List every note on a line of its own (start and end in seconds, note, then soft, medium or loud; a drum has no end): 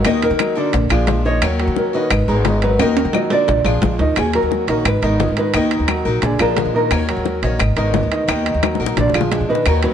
0.04 0.30 D#2 loud
0.04 0.56 D#3 medium
0.04 0.34 D#3 medium
0.04 0.57 A#3 medium
0.04 0.56 D#4 medium
0.04 0.34 D#4 medium
0.04 0.55 F#4 medium
0.04 0.55 A#4 medium
0.04 0.34 D#5 medium
0.04 0.22 D#5 medium
0.04 high bongo medium
0.04 high timbale loud
0.04 claves medium
0.22 1.29 A#4 medium
0.22 high bongo soft
0.22 high timbale medium
0.30 0.47 D#3 medium
0.39 0.54 F#3 medium
0.39 0.54 F#4 medium
0.39 0.54 A#4 medium
0.39 high bongo medium
0.39 high timbale loud
0.39 claves medium
0.55 0.85 D3 medium
0.55 0.73 A#3 medium
0.55 0.85 D4 medium
0.55 0.73 D#4 medium
0.55 0.73 F#4 medium
0.55 0.73 A#4 medium
0.55 0.85 D5 medium
0.73 0.90 A#1 loud
0.73 muted steel-string acoustic guitar stroke medium
0.73 high bongo medium
0.73 high timbale medium
0.89 1.40 A#1 medium
0.89 1.19 F3 medium
0.89 1.07 G#3 medium
0.89 1.07 D4 medium
0.89 1.07 F4 medium
0.89 1.20 F4 medium
0.89 1.20 G#4 medium
0.89 high bongo soft
0.89 high timbale medium
0.89 claves medium
1.07 1.41 F3 soft
1.07 1.42 G#3 soft
1.07 1.42 D4 medium
1.07 1.42 F4 medium
1.07 high bongo medium
1.07 low bongo medium
1.07 high timbale medium
1.07 low timbale medium
1.25 1.39 D#3 medium
1.25 1.40 D#4 medium
1.25 1.79 C#5 loud
1.25 1.40 D#5 medium
1.25 high bongo soft
1.42 1.67 D#2 loud
1.42 1.93 D#3 medium
1.42 1.56 F#3 medium
1.42 1.95 A#3 medium
1.42 1.94 C#4 medium
1.42 1.57 F#4 medium
1.42 1.92 F#4 medium
1.42 1.57 A#4 medium
1.42 high bongo medium
1.42 high timbale loud
1.42 claves medium
1.60 1.88 F#3 medium
1.60 1.88 F#4 medium
1.60 1.88 A#4 medium
1.60 high timbale medium
1.67 1.84 D#3 loud
1.76 1.95 A#4 medium
1.76 high bongo medium
1.93 2.22 D#3 medium
1.93 2.11 A#3 medium
1.93 2.11 C#4 medium
1.93 2.22 D#4 medium
1.93 2.10 F#4 medium
1.93 2.63 B4 medium
1.93 2.23 D#5 medium
2.10 2.27 G#1 loud
2.10 muted steel-string acoustic guitar stroke medium
2.10 high bongo medium
2.10 high timbale loud
2.10 claves medium
2.28 2.77 G#1 medium
2.28 2.56 G#3 medium
2.28 2.44 G#3 medium
2.28 2.45 B3 medium
2.28 2.45 D#4 medium
2.28 2.57 G#4 medium
2.28 2.44 A#4 medium
2.28 2.57 A#5 medium
2.45 2.79 G#3 soft
2.45 2.79 B3 medium
2.45 2.79 D#4 soft
2.45 2.80 A#4 medium
2.45 high bongo medium
2.45 low bongo medium
2.45 high timbale medium
2.45 low timbale medium
2.62 2.77 F#3 medium
2.62 2.77 F#4 medium
2.62 2.77 A#4 medium
2.62 2.80 B4 medium
2.62 high timbale medium
2.79 3.04 D#2 loud
2.79 3.30 D#3 medium
2.79 3.08 D#3 medium
2.79 3.31 A#3 medium
2.79 3.08 D#4 medium
2.79 3.31 D#4 medium
2.79 3.30 F#4 medium
2.79 3.15 A#4 medium
2.79 3.29 A#4 medium
2.79 3.09 D#5 medium
2.79 high bongo medium
2.79 high timbale medium
2.79 claves medium
2.97 high bongo soft
2.97 high timbale medium
3.05 3.21 D#3 loud
3.13 3.28 F#3 medium
3.13 3.28 F#4 medium
3.13 3.28 A#4 medium
3.13 3.20 D#5 medium
3.13 high bongo medium
3.13 low timbale medium
3.13 claves medium
3.30 3.59 D3 medium
3.30 3.47 A#3 medium
3.30 3.60 D4 medium
3.30 3.48 D#4 medium
3.30 3.48 F#4 medium
3.30 3.47 A#4 medium
3.30 3.60 D5 medium
3.30 4.00 D5 medium
3.30 low timbale medium
3.48 3.64 A#1 loud
3.48 muted steel-string acoustic guitar stroke medium
3.48 high bongo medium
3.48 low timbale medium
3.64 3.82 A#1 loud
3.64 3.94 F3 medium
3.64 3.82 G#3 medium
3.64 3.82 D4 medium
3.64 3.81 F4 medium
3.64 3.94 F4 medium
3.64 3.94 G#4 medium
3.64 high bongo soft
3.64 low timbale medium
3.64 claves medium
3.82 3.98 A#1 medium
3.82 4.15 F3 soft
3.82 4.16 G#3 soft
3.82 4.17 D4 medium
3.82 4.17 F4 soft
3.82 high bongo medium
3.82 low bongo medium
3.82 low timbale medium
3.99 4.15 D2 medium
3.99 4.14 D#3 medium
3.99 4.14 D#4 medium
3.99 4.14 D#5 medium
3.99 high bongo soft
3.99 low timbale medium
4.16 4.41 D#2 loud
4.16 4.67 D#3 medium
4.16 4.69 A#3 medium
4.16 4.68 C#4 medium
4.16 4.66 F#4 medium
4.16 4.34 G#4 medium
4.16 high bongo medium
4.16 high timbale medium
4.16 claves medium
4.33 4.62 F#3 medium
4.33 4.62 F#4 medium
4.33 4.63 A#4 medium
4.33 4.67 A#4 medium
4.33 high timbale medium
4.43 4.67 D#2 medium
4.51 high bongo medium
4.51 low timbale medium
4.67 4.84 A#1 medium
4.67 4.96 D#3 medium
4.67 4.85 A#3 medium
4.67 4.85 C#4 medium
4.67 4.96 D#4 medium
4.67 4.84 F#4 medium
4.67 4.86 A#4 medium
4.67 4.97 D#5 medium
4.67 high timbale medium
4.85 5.01 G#1 loud
4.85 5.34 B4 medium
4.85 muted steel-string acoustic guitar stroke medium
4.85 high bongo medium
4.85 high timbale loud
4.85 claves medium
5.02 5.27 G#1 medium
5.02 5.31 D#3 medium
5.02 5.18 G#3 soft
5.02 5.19 B3 medium
5.02 5.19 D#4 medium
5.02 5.31 D#4 medium
5.02 5.19 A#4 medium
5.02 5.31 D#5 medium
5.02 high timbale medium
5.20 5.53 G#3 soft
5.20 5.54 B3 soft
5.20 5.54 D#4 soft
5.20 5.55 A#4 soft
5.20 high bongo medium
5.20 low bongo medium
5.20 low timbale medium
5.28 5.53 G#2 medium
5.37 5.51 D#3 medium
5.37 5.51 D#4 medium
5.37 5.54 B4 medium
5.37 5.51 D#5 medium
5.37 high timbale medium
5.54 5.79 D#2 loud
5.54 6.05 D#3 medium
5.54 5.83 D#3 medium
5.54 6.07 A#3 medium
5.54 5.83 D#4 medium
5.54 6.06 D#4 medium
5.54 6.05 F#4 medium
5.54 6.05 A#4 medium
5.54 5.83 D#5 medium
5.54 high bongo medium
5.54 high timbale medium
5.54 claves medium
5.71 high bongo soft
5.71 high timbale medium
5.80 6.04 D#2 medium
5.88 6.17 F#3 medium
5.88 6.17 F#4 medium
5.88 6.17 A#4 medium
5.88 high bongo medium
5.88 high timbale medium
5.88 low timbale medium
5.88 claves medium
6.05 6.21 A#1 medium
6.05 6.22 A#3 medium
6.05 6.23 D#4 medium
6.05 6.22 F#4 medium
6.05 6.22 A#4 medium
6.05 high bongo soft
6.22 6.39 A#1 loud
6.22 6.37 D3 medium
6.22 6.37 D4 medium
6.22 6.40 G#4 medium
6.22 6.37 D5 medium
6.22 muted steel-string acoustic guitar stroke medium
6.22 high bongo medium
6.22 high timbale medium
6.39 6.64 A#1 medium
6.39 6.68 F3 medium
6.39 6.56 G#3 medium
6.39 6.57 D4 medium
6.39 6.56 F4 medium
6.39 6.68 F4 medium
6.39 6.68 G#4 medium
6.39 6.73 A#4 medium
6.39 high bongo soft
6.39 high timbale medium
6.39 claves medium
6.57 6.91 F3 soft
6.57 6.91 G#3 soft
6.57 6.91 D4 soft
6.57 6.92 F4 soft
6.57 high bongo medium
6.57 low bongo medium
6.57 high timbale medium
6.57 low timbale medium
6.65 6.90 A#2 medium
6.74 7.02 D#3 medium
6.74 6.92 A#4 medium
6.74 7.03 D#5 medium
6.91 7.16 D#2 loud
6.91 7.42 D#3 medium
6.91 7.45 A#3 medium
6.91 7.43 C#4 medium
6.91 7.42 F#4 medium
6.91 7.40 C#5 medium
6.91 high bongo medium
6.91 high timbale medium
6.91 claves medium
7.09 7.37 F#3 medium
7.09 7.37 F#4 medium
7.09 7.37 A#4 medium
7.09 high timbale medium
7.17 7.41 D#2 medium
7.25 high bongo medium
7.25 low timbale medium
7.42 7.59 A#1 medium
7.42 7.71 D#3 medium
7.42 7.60 A#3 medium
7.42 7.60 C#4 medium
7.42 7.71 D#4 medium
7.42 7.59 F#4 medium
7.42 7.54 C#5 medium
7.42 7.71 D#5 medium
7.42 high timbale medium
7.59 7.76 G#1 loud
7.59 muted steel-string acoustic guitar stroke medium
7.59 high bongo medium
7.59 high timbale medium
7.59 claves medium
7.76 8.01 G#1 medium
7.76 8.05 D#3 medium
7.76 7.92 G#3 medium
7.76 7.93 B3 medium
7.76 7.94 D#4 medium
7.76 8.06 D#4 medium
7.76 7.93 A#4 medium
7.76 8.06 D#5 medium
7.76 high timbale medium
7.94 8.28 G#3 soft
7.94 8.28 B3 soft
7.94 8.28 D#4 soft
7.94 8.29 A#4 soft
7.94 high bongo medium
7.94 low bongo medium
7.94 low timbale medium
8.03 8.27 D2 medium
8.11 8.26 D#3 medium
8.11 8.26 D#4 medium
8.11 8.26 D#5 medium
8.11 high timbale medium
8.28 8.53 D#2 loud
8.28 8.79 D#3 medium
8.28 8.57 D#3 medium
8.28 8.82 A#3 medium
8.28 8.57 D#4 medium
8.28 8.80 D#4 medium
8.28 8.79 F#4 medium
8.28 8.79 A#4 medium
8.28 8.57 D#5 medium
8.28 high bongo medium
8.28 high timbale medium
8.28 claves medium
8.46 high bongo soft
8.46 high timbale medium
8.54 8.79 D#2 medium
8.63 8.91 F#3 medium
8.63 8.91 F#4 medium
8.63 8.92 A#4 medium
8.63 high bongo medium
8.63 high timbale medium
8.63 low timbale medium
8.63 claves medium
8.75 high bongo medium
8.80 8.96 A#1 medium
8.80 8.97 A#3 medium
8.80 8.97 D#4 medium
8.80 8.97 F#4 medium
8.80 8.96 A#4 medium
8.86 high bongo medium
8.97 9.13 A#1 loud
8.97 9.11 D3 medium
8.97 9.12 D4 medium
8.97 9.12 D5 medium
8.97 9.15 D5 medium
8.97 muted steel-string acoustic guitar stroke medium
8.97 low bongo medium
8.97 high timbale medium
9.10 low bongo medium
9.14 9.39 A#1 medium
9.14 9.43 F3 medium
9.14 9.31 G#3 medium
9.14 9.32 D4 medium
9.14 9.31 F4 medium
9.14 9.43 F4 medium
9.14 9.34 F4 soft
9.14 9.43 G#4 medium
9.14 high timbale medium
9.14 claves medium
9.21 low bongo medium
9.31 9.65 F3 soft
9.31 9.65 G#3 soft
9.31 9.66 D4 medium
9.31 9.66 F4 soft
9.31 9.49 G#4 medium
9.31 low bongo medium
9.31 high timbale medium
9.31 low timbale medium
9.41 9.65 A#2 medium
9.49 9.77 D#3 medium
9.49 9.66 B4 loud
9.49 9.77 D#5 medium
9.55 low bongo medium
9.66 9.91 D#2 loud
9.66 9.94 D#3 medium
9.66 9.94 A#3 medium
9.66 9.94 C#4 medium
9.66 9.94 F#4 medium
9.66 9.83 A#4 medium
9.66 high bongo medium
9.66 high timbale medium
9.66 claves medium
9.83 9.94 F#3 medium
9.83 9.94 F#4 medium
9.83 9.94 A#4 medium
9.83 9.94 B4 medium
9.83 high timbale medium